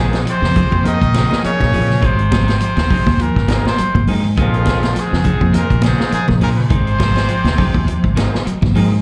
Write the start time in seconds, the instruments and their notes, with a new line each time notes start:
Already playing: fingered electric bass A#1, baritone saxophone G#2, clean electric guitar D#3 F3 C4 C#4 G#4, tonewheel organ A#3 D#4 G#4 C5, trumpet G#4
0.12 clean electric guitar C4 C#4 G#4, snare, closed hi-hat
0.26 baritone saxophone C3, clean electric guitar F3, closed hi-hat
0.31 trumpet C5
0.42 fingered electric bass F2, clean electric guitar C#3 C4 C#4 G#4, snare
0.55 clean electric guitar F3 C4 G#4, muted clean electric guitar stroke, kick, snare, closed hi-hat, low conga
0.71 fingered electric bass F2, clean electric guitar F3, kick, high conga
0.84 clean electric guitar D#3, baritone saxophone D#3, tonewheel organ A#3 D#4 G#4 C5, trumpet D#5, closed hi-hat, high conga
1.01 fingered electric bass A#1, kick, closed hi-hat
1.14 clean electric guitar C#3 F3 C4 C#4 G#4, tonewheel organ G#4 C5, snare, closed hi-hat, high conga
1.30 tonewheel organ A#3 D#4 G#4 C#5, snare, high conga
1.43 baritone saxophone C#3, clean electric guitar F3, trumpet C#5, muted fingered electric bass stroke, closed hi-hat
1.59 fingered electric bass A#1, clean electric guitar D#3, kick, snare, high conga, low conga
1.72 fingered electric bass A#2, clean electric guitar F3 C4 C#4 G#4, open hi-hat, high conga, low conga
1.88 clean electric guitar C#3, snare
2.02 fingered electric bass G#1, baritone saxophone C3, clean electric guitar D#3 F#3 C4 D#4 G#4, trumpet C5, kick, closed hi-hat
2.19 closed hi-hat
2.31 clean electric guitar F3 F#3 C4 D#4 G#4, kick, snare, closed hi-hat, high conga
2.47 clean electric guitar C4 D#4 G#4, snare, closed hi-hat
2.60 baritone saxophone C3, clean electric guitar F3, trumpet C5, closed hi-hat
2.76 fingered electric bass D#2, clean electric guitar D#3 C4 D#4 G#4, snare, closed hi-hat
2.90 clean electric guitar F#3 C4 D#4 G#4, kick, open hi-hat, low conga
3.06 fingered electric bass D#2, clean electric guitar F3, kick, snare, high conga
3.19 baritone saxophone A#2, clean electric guitar F3, trumpet A#4, closed hi-hat, high conga
3.36 fingered electric bass G#1, kick, snare
3.48 clean electric guitar D#3 F#3 C4 D#4 G#4, tonewheel organ A#3 D#4 G#4 C5, snare, closed hi-hat, high conga
3.65 baritone saxophone C3, trumpet C5, snare, high conga
3.78 clean electric guitar F#3, muted fingered electric bass stroke, closed hi-hat
3.95 fingered electric bass G#1, clean electric guitar F3, kick, high conga
4.07 fingered electric bass G#2, clean electric guitar F#3 C4 D#4 G#4, tonewheel organ A#3 D#4 G#4 C5, open hi-hat, low conga
4.24 clean electric guitar D#3
4.37 fingered electric bass A#1, baritone saxophone F2, clean electric guitar F3 C4 C#4 G#4, tonewheel organ A#3 D#4 G#4 C5, muted clean electric guitar stroke, kick, closed hi-hat
4.42 trumpet F4
4.54 closed hi-hat
4.65 clean electric guitar D#3 F3 C4 C#4 G#4, kick, snare, closed hi-hat, high conga
4.83 snare, closed hi-hat
4.95 clean electric guitar F3, snare, closed hi-hat
5.00 baritone saxophone G#2, trumpet G#4
5.11 fingered electric bass F2, clean electric guitar C#3, snare
5.24 clean electric guitar F3 C4 C#4 G#4, kick, closed hi-hat, low conga
5.41 fingered electric bass F2, clean electric guitar F3, kick, high conga
5.53 baritone saxophone A#2, clean electric guitar D#3, tonewheel organ A#3 D#4 G#4 C5, trumpet A#4, closed hi-hat, high conga
5.70 fingered electric bass A#1, kick, closed hi-hat
5.82 clean electric guitar C#3 F3 C#4 G#4, tonewheel organ G#4 C5, trumpet G#4, muted clean electric guitar stroke, snare, closed hi-hat, high conga
5.87 baritone saxophone G#2
5.98 tonewheel organ A#3 D#4 G#4 C5, snare, high conga
6.12 baritone saxophone G#2, clean electric guitar F3, trumpet G#4, muted fingered electric bass stroke, closed hi-hat
6.28 fingered electric bass A#1, kick, snare, high conga, low conga
6.40 fingered electric bass A#2, baritone saxophone A#2, clean electric guitar F3 C4 C#4 G#4, trumpet A#4, open hi-hat, high conga, low conga
6.57 baritone saxophone C3, clean electric guitar C#3, trumpet C5
6.69 fingered electric bass G#1, clean electric guitar D#3 C4 D#4 G#4, muted clean electric guitar stroke, kick, closed hi-hat
6.87 closed hi-hat
6.98 clean electric guitar F3 F#3 C4 D#4 G#4, kick, snare, closed hi-hat, high conga
7.15 clean electric guitar C4 D#4 G#4, snare, closed hi-hat
7.28 clean electric guitar F3, closed hi-hat
7.44 fingered electric bass D#2, clean electric guitar D#3 C4 D#4 G#4, snare, closed hi-hat
7.57 clean electric guitar F#3 C4 D#4 G#4, kick, open hi-hat, low conga
7.74 fingered electric bass D#2, clean electric guitar F3, kick, high conga
7.88 clean electric guitar F3, closed hi-hat
8.04 fingered electric bass G#1, kick
8.15 clean electric guitar D#3 F#3 C4 D#4 G#4, tonewheel organ A#3 D#4 G#4 C5, snare, closed hi-hat, high conga
8.35 snare
8.46 clean electric guitar F#3, muted fingered electric bass stroke, closed hi-hat
8.62 fingered electric bass G#1, clean electric guitar F3, kick, snare, high conga, low conga
8.74 fingered electric bass G#2, clean electric guitar F#3 C4 D#4 G#4, tonewheel organ A#3 D#4 G#4 C5, open hi-hat, low conga
8.92 clean electric guitar D#3